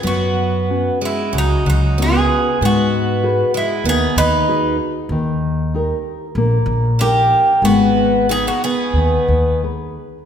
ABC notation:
X:1
M:4/4
L:1/16
Q:1/4=94
K:G#m
V:1 name="Bouzouki"
F6 E2 D2 D2 G4 | F6 E2 G2 B4 z2 | z12 =G4 | F4 G F G6 z4 |]
V:2 name="Nylon-string guitar"
F,4 [B,CF]4 C,4 [B,CF]4 | G,4 [FGB]4 D,4 [FGB]4 | D,4 [D=GA]4 A,4 [DGA]4 | G,4 [DGB]4 D,4 [DGB]4 |]
V:3 name="Twelve-string acoustic guitar"
B,6 G,2 F,2 F,2 B,4 | B,6 G,2 B,2 D4 z2 | z12 A,4 | B,4 B, A, B,6 z4 |]
V:4 name="Upright bass" clef=bass
F,,8 C,,2 C,,6 | G,,8 D,,2 D,,6 | D,,8 A,,,2 A,,,6 | G,,,8 D,,2 D,,6 |]